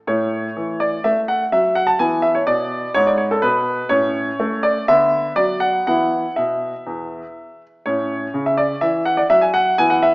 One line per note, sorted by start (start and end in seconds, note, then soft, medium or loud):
0.07 0.47 A2 soft
0.07 1.03 A3 soft
0.07 0.81 C#5 medium
0.57 0.95 E3 soft
0.80 1.05 D5 medium
1.04 1.43 A3 soft
1.04 1.19 E5 medium
1.28 1.43 F#5 medium
1.52 1.91 F#3 soft
1.52 1.76 E5 medium
1.75 1.88 F#5 medium
1.87 2.00 A5 medium
1.99 2.38 E3 soft
1.99 3.86 B3 soft
1.99 2.21 G#5 medium
2.22 2.35 E5 medium
2.35 2.47 C#5 soft
2.47 2.85 B2 soft
2.47 2.91 D5 medium
2.94 3.34 G#2 medium
2.94 3.07 C#5 medium
3.07 3.19 D5 soft
3.18 3.30 C#5 soft
3.31 3.43 A4 medium
3.42 3.81 B2 soft
3.42 3.90 B4 medium
3.89 4.29 A2 soft
3.89 4.82 C#4 soft
3.89 4.62 C#5 medium
4.40 4.77 A3 soft
4.63 4.84 D5 medium
4.88 5.26 D3 soft
4.88 5.82 B3 soft
4.88 5.31 E5 medium
5.36 5.76 F#3 soft
5.36 5.57 D5 medium
5.60 5.85 F#5 medium
5.87 6.22 E3 soft
5.87 6.27 B3 soft
5.87 6.27 E4 soft
5.87 6.37 F#5 medium
6.36 6.72 B2 soft
6.36 7.61 E5 soft
6.87 7.21 E2 soft
7.86 8.26 A2 soft
7.86 9.76 C#4 soft
7.86 8.43 C#5 medium
8.34 8.73 C#3 soft
8.46 8.59 E5 soft
8.57 8.80 D5 medium
8.81 9.21 E3 soft
8.81 9.04 E5 medium
9.05 9.18 F#5 medium
9.17 9.30 D5 medium
9.30 9.70 F#3 soft
9.30 9.43 E5 medium
9.41 9.54 G#5 medium
9.54 9.79 F#5 medium
9.78 10.14 E3 soft
9.78 10.14 B3 soft
9.78 9.91 G#5 medium
9.90 10.03 F#5 medium
10.03 10.14 E5 medium